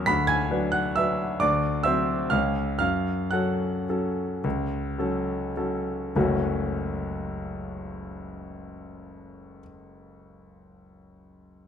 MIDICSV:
0, 0, Header, 1, 2, 480
1, 0, Start_track
1, 0, Key_signature, 3, "minor"
1, 0, Tempo, 417827
1, 95, Time_signature, 3, 2, 24, 8
1, 578, Tempo, 448430
1, 2018, Tempo, 478851
1, 2978, Tempo, 522193
1, 3458, Tempo, 551978
1, 4898, Tempo, 573614
1, 10497, End_track
2, 0, Start_track
2, 0, Title_t, "Grand piano"
2, 0, Program_c, 0, 0
2, 0, Control_c, 0, 64, 127
2, 0, Note_on_c, 0, 40, 94
2, 0, Note_on_c, 0, 54, 60
2, 0, Note_on_c, 0, 61, 64
2, 0, Note_on_c, 0, 70, 67
2, 0, Note_on_c, 0, 85, 106
2, 0, Note_on_c, 0, 97, 127
2, 70, Note_on_c, 0, 95, 125
2, 82, Note_on_c, 0, 83, 108
2, 85, Note_on_c, 0, 38, 87
2, 118, Note_off_c, 0, 85, 0
2, 118, Control_c, 0, 64, 0
2, 119, Note_off_c, 0, 40, 0
2, 119, Note_off_c, 0, 54, 0
2, 122, Note_off_c, 0, 97, 0
2, 123, Note_off_c, 0, 61, 0
2, 125, Note_off_c, 0, 70, 0
2, 294, Control_c, 0, 64, 127
2, 307, Note_off_c, 0, 83, 0
2, 314, Note_on_c, 0, 92, 118
2, 318, Note_off_c, 0, 95, 0
2, 328, Note_on_c, 0, 80, 92
2, 557, Note_off_c, 0, 38, 0
2, 580, Note_on_c, 0, 54, 64
2, 587, Note_on_c, 0, 62, 62
2, 589, Note_on_c, 0, 71, 62
2, 788, Note_off_c, 0, 80, 0
2, 807, Note_on_c, 0, 90, 92
2, 815, Note_off_c, 0, 92, 0
2, 816, Note_on_c, 0, 78, 68
2, 1035, Note_off_c, 0, 54, 0
2, 1038, Note_off_c, 0, 62, 0
2, 1040, Note_off_c, 0, 71, 0
2, 1055, Note_off_c, 0, 78, 0
2, 1063, Note_on_c, 0, 88, 103
2, 1069, Note_off_c, 0, 90, 0
2, 1076, Note_on_c, 0, 76, 80
2, 1082, Note_on_c, 0, 54, 57
2, 1085, Note_on_c, 0, 62, 59
2, 1090, Note_on_c, 0, 71, 60
2, 1509, Note_off_c, 0, 54, 0
2, 1510, Note_off_c, 0, 62, 0
2, 1513, Note_off_c, 0, 71, 0
2, 1516, Note_off_c, 0, 76, 0
2, 1537, Note_on_c, 0, 86, 113
2, 1542, Note_off_c, 0, 88, 0
2, 1547, Note_on_c, 0, 74, 86
2, 1554, Note_on_c, 0, 38, 79
2, 1570, Control_c, 0, 64, 0
2, 1753, Control_c, 0, 64, 127
2, 1983, Note_off_c, 0, 74, 0
2, 2003, Note_on_c, 0, 88, 109
2, 2006, Note_off_c, 0, 38, 0
2, 2011, Note_off_c, 0, 86, 0
2, 2014, Note_on_c, 0, 76, 82
2, 2021, Note_on_c, 0, 54, 58
2, 2026, Note_on_c, 0, 60, 57
2, 2029, Note_on_c, 0, 72, 65
2, 2451, Note_off_c, 0, 54, 0
2, 2454, Note_off_c, 0, 60, 0
2, 2455, Note_off_c, 0, 72, 0
2, 2455, Note_off_c, 0, 76, 0
2, 2470, Note_on_c, 0, 89, 102
2, 2479, Note_on_c, 0, 77, 76
2, 2483, Note_off_c, 0, 88, 0
2, 2485, Note_on_c, 0, 56, 50
2, 2486, Note_on_c, 0, 37, 76
2, 2490, Note_on_c, 0, 61, 52
2, 2497, Note_on_c, 0, 68, 54
2, 2510, Control_c, 0, 64, 0
2, 2684, Control_c, 0, 64, 127
2, 2935, Note_off_c, 0, 56, 0
2, 2938, Note_off_c, 0, 61, 0
2, 2938, Note_off_c, 0, 77, 0
2, 2941, Note_off_c, 0, 68, 0
2, 2943, Note_off_c, 0, 89, 0
2, 2958, Note_on_c, 0, 89, 104
2, 2961, Note_off_c, 0, 37, 0
2, 2973, Note_on_c, 0, 77, 88
2, 2976, Note_on_c, 0, 42, 72
2, 2998, Control_c, 0, 64, 0
2, 3196, Control_c, 0, 64, 127
2, 3421, Note_off_c, 0, 77, 0
2, 3437, Note_on_c, 0, 90, 79
2, 3442, Note_off_c, 0, 42, 0
2, 3448, Note_off_c, 0, 89, 0
2, 3450, Note_on_c, 0, 78, 64
2, 3456, Note_on_c, 0, 54, 55
2, 3458, Note_on_c, 0, 61, 53
2, 3462, Note_on_c, 0, 69, 60
2, 3912, Note_off_c, 0, 54, 0
2, 3913, Note_off_c, 0, 61, 0
2, 3915, Note_off_c, 0, 69, 0
2, 3949, Note_on_c, 0, 54, 52
2, 3951, Note_on_c, 0, 61, 53
2, 3954, Note_on_c, 0, 69, 56
2, 4392, Note_off_c, 0, 54, 0
2, 4393, Note_off_c, 0, 61, 0
2, 4394, Note_off_c, 0, 69, 0
2, 4425, Note_on_c, 0, 37, 72
2, 4448, Control_c, 0, 64, 0
2, 4596, Control_c, 0, 64, 127
2, 4883, Note_off_c, 0, 37, 0
2, 4898, Note_on_c, 0, 54, 56
2, 4904, Note_on_c, 0, 61, 53
2, 4907, Note_on_c, 0, 69, 59
2, 5342, Note_off_c, 0, 78, 0
2, 5346, Note_off_c, 0, 54, 0
2, 5349, Note_off_c, 0, 61, 0
2, 5350, Note_off_c, 0, 69, 0
2, 5370, Note_off_c, 0, 90, 0
2, 5384, Note_on_c, 0, 54, 52
2, 5387, Note_on_c, 0, 61, 50
2, 5390, Note_on_c, 0, 69, 55
2, 5840, Note_off_c, 0, 54, 0
2, 5841, Note_off_c, 0, 61, 0
2, 5843, Note_off_c, 0, 69, 0
2, 5878, Note_on_c, 0, 30, 74
2, 5881, Note_on_c, 0, 37, 70
2, 5883, Note_on_c, 0, 54, 65
2, 5885, Note_on_c, 0, 57, 66
2, 5887, Note_on_c, 0, 61, 68
2, 5891, Control_c, 0, 64, 0
2, 5891, Note_on_c, 0, 66, 63
2, 6035, Control_c, 0, 64, 127
2, 8751, Note_off_c, 0, 30, 0
2, 8753, Note_off_c, 0, 37, 0
2, 8756, Note_off_c, 0, 54, 0
2, 8758, Note_off_c, 0, 57, 0
2, 8759, Note_off_c, 0, 61, 0
2, 8764, Note_off_c, 0, 66, 0
2, 10497, End_track
0, 0, End_of_file